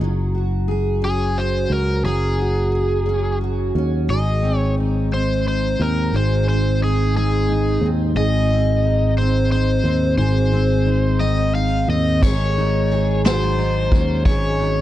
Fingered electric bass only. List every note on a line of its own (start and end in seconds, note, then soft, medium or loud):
0.01 1.66 F#1 medium
1.70 2.02 C#2 medium
2.04 3.71 F#1 medium
3.75 4.07 D#2 medium
4.09 5.75 G#1 medium
5.80 6.11 D#2 medium
6.13 7.78 G#1 medium
7.81 8.13 D#2 medium
8.15 9.80 G#1 medium
9.84 10.16 D#2 medium
10.18 11.84 G#1 medium
11.88 12.20 D#2 medium
12.23 13.88 G#1 medium
13.92 14.24 D#2 medium
14.26 14.81 G#1 loud